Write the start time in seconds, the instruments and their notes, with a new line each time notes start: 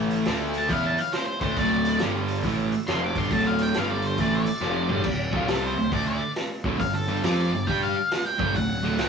Already playing: picked electric bass A1, overdriven electric guitar A2 E3 A3, tonewheel organ C#4 E4 G4 B4
0.10 open hi-hat
0.25 picked electric bass D2, overdriven electric guitar D3 A3 D4, tonewheel organ A3 D4 A4 D5, snare, open hi-hat
0.54 open hi-hat
0.58 lead electric guitar A5
0.69 picked electric bass E2, overdriven electric guitar E3 B3 E4, tonewheel organ C#4 E4 G4 B4, lead electric guitar F5, kick, open hi-hat
0.87 lead electric guitar A5
0.98 lead electric guitar F5, open hi-hat
1.13 lead electric guitar C5, snare, open hi-hat
1.26 lead electric guitar C5
1.41 picked electric bass D2, overdriven electric guitar D3 A3 D4, lead electric guitar C5, kick, open hi-hat
1.56 picked electric bass D1, overdriven electric guitar D2 A2 D3, tonewheel organ C4 E4 F#4 A4, lead electric guitar D5, kick, open hi-hat
1.85 open hi-hat
1.99 picked electric bass G1, overdriven electric guitar G2 D3 G3, tonewheel organ G3 D4 G4 D5, snare, open hi-hat
2.28 open hi-hat
2.43 picked electric bass A1, overdriven electric guitar A2 E3 A3, tonewheel organ C4 E4 F#4 A4, kick, open hi-hat
2.72 open hi-hat
2.87 picked electric bass F1, overdriven electric guitar F2 C3 F3, lead electric guitar C6, snare, open hi-hat
3.04 lead electric guitar D6
3.15 picked electric bass G1, overdriven electric guitar G2 D3 G3, lead electric guitar C6, kick, open hi-hat
3.31 picked electric bass D1, overdriven electric guitar D2 A2 D3, lead electric guitar A5, kick, open hi-hat
3.47 lead electric guitar F5
3.59 lead electric guitar G5, open hi-hat
3.74 picked electric bass G1, overdriven electric guitar G2 D3 G3, tonewheel organ G3 D4 G4 D5, lead electric guitar F5, snare, open hi-hat
3.91 lead electric guitar D5
4.02 open hi-hat
4.06 lead electric guitar C5
4.18 picked electric bass A1, overdriven electric guitar A2 E3 A3, tonewheel organ C4 E4 F#4 A4, lead electric guitar D5, kick, open hi-hat
4.36 lead electric guitar D5
4.46 open hi-hat
4.61 picked electric bass F1, overdriven electric guitar F2 C3 F3, snare
4.89 picked electric bass G1, overdriven electric guitar G2 D3 G3, mid tom
4.96 floor tom
5.04 picked electric bass D1, overdriven electric guitar D2 A2, kick, crash
5.32 picked electric bass D1, overdriven electric guitar D2 A2 D3, lead electric guitar F4, kick
5.47 picked electric bass C2, overdriven electric guitar C3 G3 C4, lead electric guitar A4, snare, open hi-hat
5.66 lead electric guitar C5
5.77 picked electric bass D1, overdriven electric guitar D2 A2
5.92 picked electric bass D2, overdriven electric guitar D3 A3 D4, lead electric guitar D5, kick, open hi-hat
6.07 lead electric guitar D5
6.36 snare, open hi-hat
6.64 picked electric bass D1, overdriven electric guitar D2 A2 D3, kick
6.79 picked electric bass G1, overdriven electric guitar G2 D3, lead electric guitar F5, kick, open hi-hat
6.94 lead electric guitar A4
7.07 picked electric bass G1, overdriven electric guitar G2 D3 G3
7.22 picked electric bass F2, overdriven electric guitar F3 C4 F4, lead electric guitar D5, snare, open hi-hat
7.51 picked electric bass G1, overdriven electric guitar G2 D3
7.67 picked electric bass G2, overdriven electric guitar G3 D4 G4, lead electric guitar G5, kick, open hi-hat
7.83 lead electric guitar F5
8.11 snare, open hi-hat
8.26 lead electric guitar G5
8.39 picked electric bass G1, overdriven electric guitar G2 D3 G3, kick
8.55 picked electric bass D1, overdriven electric guitar D2 A2, lead electric guitar F#5, kick, open hi-hat
8.83 picked electric bass D1, overdriven electric guitar D2 A2 D3
8.97 picked electric bass C2, overdriven electric guitar C3 G3 C4, snare, open hi-hat